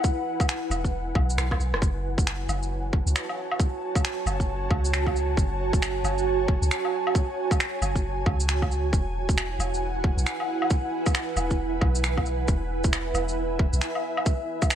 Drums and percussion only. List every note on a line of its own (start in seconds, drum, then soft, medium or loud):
0.04 kick loud
0.04 shaker medium
0.40 kick loud
0.40 low woodblock soft
0.40 shaker medium
0.49 finger snap loud
0.49 shaker medium
0.71 low woodblock soft
0.71 shaker medium
0.85 kick medium
0.85 shaker soft
1.15 kick loud
1.15 low woodblock soft
1.30 shaker medium
1.38 finger snap loud
1.38 cross-stick medium
1.38 shaker medium
1.51 kick medium
1.51 cross-stick medium
1.51 low woodblock soft
1.60 shaker soft
1.74 cross-stick medium
1.82 kick loud
1.82 shaker medium
2.18 kick loud
2.18 shaker medium
2.27 finger snap loud
2.27 shaker medium
2.49 low woodblock soft
2.49 shaker medium
2.63 shaker soft
2.93 kick loud
3.07 shaker medium
3.16 finger snap loud
3.16 shaker medium
3.29 low woodblock soft
3.52 low woodblock medium
3.60 kick loud
3.60 shaker medium
3.95 kick loud
3.95 low woodblock soft
3.95 shaker medium
4.05 finger snap loud
4.05 shaker medium
4.27 low woodblock soft
4.27 shaker medium
4.40 kick medium
4.40 shaker soft
4.71 kick loud
4.71 low woodblock soft
4.85 shaker medium
4.94 finger snap loud
4.94 shaker medium
5.07 kick medium
5.07 low woodblock soft
5.16 shaker soft
5.37 kick loud
5.37 shaker medium
5.73 kick loud
5.73 shaker medium
5.82 finger snap loud
5.82 shaker medium
6.05 low woodblock soft
6.05 shaker medium
6.18 shaker soft
6.48 kick loud
6.63 shaker medium
6.71 finger snap loud
6.71 shaker medium
6.85 low woodblock soft
7.07 low woodblock medium
7.15 kick loud
7.15 shaker medium
7.51 kick loud
7.51 low woodblock soft
7.51 shaker medium
7.60 finger snap loud
7.60 shaker medium
7.82 low woodblock soft
7.82 shaker medium
7.96 kick medium
7.96 shaker soft
8.26 kick loud
8.26 low woodblock soft
8.40 shaker medium
8.49 finger snap loud
8.49 shaker medium
8.62 kick medium
8.62 low woodblock soft
8.72 shaker soft
8.93 kick loud
8.93 shaker medium
9.29 kick loud
9.29 shaker soft
9.38 finger snap loud
9.38 shaker medium
9.60 low woodblock soft
9.60 shaker medium
9.74 shaker soft
10.04 kick loud
10.18 shaker medium
10.27 finger snap loud
10.27 shaker medium
10.40 low woodblock soft
10.62 low woodblock medium
10.70 kick loud
10.70 shaker medium
11.06 kick loud
11.06 low woodblock soft
11.06 shaker medium
11.15 finger snap loud
11.15 shaker medium
11.37 low woodblock soft
11.37 shaker medium
11.51 kick medium
11.51 shaker soft
11.81 kick loud
11.81 low woodblock soft
11.95 shaker medium
12.04 finger snap loud
12.04 shaker medium
12.17 kick medium
12.17 low woodblock soft
12.26 shaker soft
12.48 kick loud
12.48 shaker medium
12.84 kick loud
12.84 shaker medium
12.93 finger snap loud
12.93 shaker medium
13.15 low woodblock soft
13.15 shaker medium
13.28 shaker soft
13.59 kick loud
13.73 shaker medium
13.81 finger snap loud
13.81 shaker medium
13.95 low woodblock soft
14.17 low woodblock medium
14.26 kick loud
14.26 shaker medium
14.62 kick loud
14.62 low woodblock soft
14.62 shaker medium
14.70 finger snap loud
14.70 shaker medium